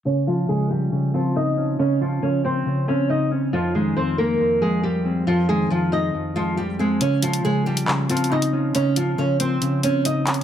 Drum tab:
HH |------------------------------------------------|------------------------------------------------|------------------------------------------------|------------------------------------------------|
CP |------------------------------------------------|------------------------------------------------|------------------------------------------------|------------------------------------------------|

HH |x-----x--x-----------x--------x-x-x----x--------|x-----x-----------x-----x-----x-----x-----x-x---|
CP |------------------------x-----------------------|------------------------------------------x-----|